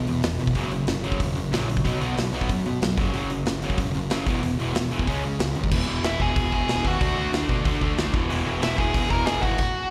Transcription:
0.07 E2 B2, open hi-hat
0.23 E1 E2 B2, snare, open hi-hat
0.39 E1 E2 B2, open hi-hat
0.47 kick
0.55 F#1 F#2 C#3 F#3, kick, open hi-hat
0.72 F#2 C#3, open hi-hat
0.87 F#1 F#2 C#3, snare, open hi-hat
1.03 F#1 F#2 C#3 F#3, open hi-hat
1.12 kick
1.20 E1 F#2 C#3, kick, open hi-hat
1.36 F#1 F#2 C#3, open hi-hat
1.51 A#1 F#2 C#3 F#3, snare, open hi-hat
1.69 F#2 C#3, open hi-hat
1.77 kick
1.84 B1 B2 F#3 B3, kick, open hi-hat
2.01 B1 B2 F#3 B3, open hi-hat
2.16 B1 B2 F#3, snare, open hi-hat
2.32 B1 B2 F#3 B3, open hi-hat
2.41 kick
2.49 F#2 B2 F#3, kick, open hi-hat
2.64 B2 F#3, open hi-hat
2.81 B1 B2 F#3, snare, open hi-hat
2.97 F#1 F#2 C#3 F#3, kick, open hi-hat
3.14 F#1 F#2 C#3 F#3, open hi-hat
3.30 F#2 C#3, open hi-hat
3.46 F#1 F#2 C#3, snare, open hi-hat
3.61 F#1 F#2 C#3 F#3, open hi-hat
3.70 kick
3.78 E1 F#2 C#3, kick, open hi-hat
3.94 F#1 F#2 C#3, open hi-hat
4.10 F#1 F#2 C#3 F#3, snare, open hi-hat
4.27 E1 E2 B2 E3, kick, open hi-hat
4.42 E1 E2 B2, open hi-hat
4.58 E1 E2 B2 E3, open hi-hat
4.75 E1 E2 B2, snare, open hi-hat
4.91 E1 E2 B2 E3, open hi-hat
4.99 kick
5.07 C#2 C#3 G#3 C#4, kick, open hi-hat
5.24 C#3 G#3, open hi-hat
5.39 C#2 C#3 G#3, snare, open hi-hat
5.55 D#2 C#3 G#3, open hi-hat
5.64 kick
5.71 E1 E2 B2 E3, kick, crash
5.87 E1 E2 B2 E3
6.03 E1 E2 B2 E3 E4 E5, snare, open hi-hat
6.19 E1 E2 B2 E3 G#4 G#5, kick
6.36 E1 E2 B2 E3, kick, open hi-hat
6.51 E1 E2 B2 E3 G#4 G#5, kick
6.67 E1 E2 B2 E3, snare, open hi-hat
6.84 D#2 E2 B2 E3 F#4 F#5, kick
7.00 D2 D3 A3 D4, kick, open hi-hat
7.16 D2 D3 A3 D4
7.32 D2 D3 A3 D4, snare, open hi-hat
7.49 B2 D3 A3 D4, kick
7.65 D2 D3 A3 D4, kick, open hi-hat
7.81 D2 D3 A3 D4, kick
7.98 D2 D3 A3 D4, snare, open hi-hat
8.13 E1 E2 B2 E3, kick
8.29 E1 E2 B2 E3 G#3 B3 E4, open hi-hat
8.45 E1 E2 B2 E3
8.61 E1 E2 B2 E3 E4 E5, snare, open hi-hat
8.76 E1 E2 B2 E3 G#4 G#5, kick
8.93 E1 E2 B2 E3, kick, open hi-hat
9.09 E1 E2 B2 E3 A#4 A#5, kick
9.25 E1 E2 B2 E3 G#4 G#5, snare, open hi-hat
9.42 G#1 E2 B2 E3 F#4 F#5, kick
9.58 kick, crash

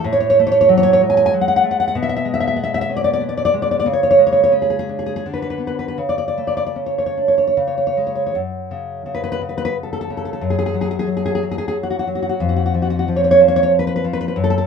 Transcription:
0.04 A2
0.13 C#5
0.20 C#5
0.30 C#5
0.39 A3
0.47 C#5
0.52 C#5
0.61 C#5
0.69 F#3
0.77 C#5
0.83 C#5
0.93 C#5
1.01 G#3
1.10 G#5
1.17 G#5
1.26 G#5
1.34 F#3
1.41 F#5
1.48 F#5
1.56 F#5
1.63 A3
1.71 F#5
1.80 F#5
1.88 F#5
1.95 B2
2.03 E5
2.09 E5
2.17 E5
2.25 G#3
2.34 E5
2.40 E5
2.47 E5
2.56 B3
2.64 E5
2.74 E5
2.81 E5
2.89 C#4
2.96 D5
3.04 D5
3.13 D5
3.21 B3
3.29 D5
3.37 D5
3.45 D5
3.54 G#3
3.62 D5
3.71 D5
3.80 D5
3.86 C#3
3.93 C#5
4.03 C#5
4.11 C#5
4.18 G#3
4.27 C#5
4.33 C#5
4.44 C#5
4.52 C#4
4.62 G#4
4.70 G#4
4.79 G#4
4.89 D4
4.99 G#4
5.06 G#4
5.16 G#4
5.26 D3
5.34 B4
5.42 B4
5.50 B4
5.58 B3
5.67 B4
5.79 B4
5.88 B4
5.98 C#3
6.09 D5
6.18 D5
6.28 D5
6.38 A3
6.47 D5
6.57 D5
6.66 D5
6.76 C#4
6.86 C#5
6.98 C#5
7.06 C#5
7.17 D4
7.28 C#5
7.38 C#5
7.47 C#5
7.57 C#3
7.67 C#5
7.78 C#5
7.87 C#5
7.97 G#3
8.07 C#5
8.15 C#5
8.27 C#5
8.35 F#2
8.71 C#3
9.06 C#3
9.15 B4
9.24 B4
9.32 B4
9.42 C#3
9.49 B4
9.58 B4
9.65 B4
9.83 A4
9.93 A4
10.01 A4
10.10 C#3
10.17 A4
10.25 A4
10.33 A4
10.41 F#2
10.50 G#4
10.59 G#4
10.66 G#4
10.74 F#3
10.81 G#4
10.91 G#4
10.99 G#4
11.07 F#3
11.17 G#4
11.26 G#4
11.35 G#4
11.43 F#3
11.51 G#4
11.58 G#4
11.68 G#4
11.83 F#4
11.90 F#4
11.99 F#4
12.07 F#3
12.15 F#4
12.22 F#4
12.29 F#4
12.40 F2
12.49 F#4
12.56 F#4
12.66 F#4
12.74 F3
12.82 F#4
12.90 F#4
12.99 F#4
13.08 F3
13.16 C#5
13.24 C#5
13.31 C#5
13.40 F3
13.48 C#5
13.56 C#5
13.63 C#5
13.79 B4
13.87 B4
13.96 B4
14.04 F3
14.13 B4
14.21 B4
14.28 B4
14.36 F#2
14.44 A4
14.50 A4
14.58 A4

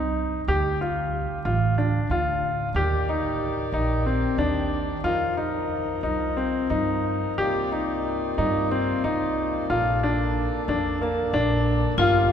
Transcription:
Already playing: C2 D#4
0.48 D2 G4
0.81 F4
1.45 A1 F4
1.78 D4
2.10 D2 F4
2.74 D#2 D#3 G4 D5
3.09 D#4
3.72 A#1 D#4
4.06 C4
4.38 D#2 D4
5.04 F2 F3 D#4 F4 A#4
5.37 D#4
6.03 C2 D#4
6.37 C4
6.70 G2 D#4
7.38 C2 C3 A#3 D#4 F4 G4 D5
7.72 D#4
8.38 G2 D#4
8.71 C4
9.04 C2 D#4
9.70 A#1 A#3 F4 A4
10.03 D4
10.68 F2 D4
11.02 A#3
11.33 A#1 D4
11.98 G1 G3 F4

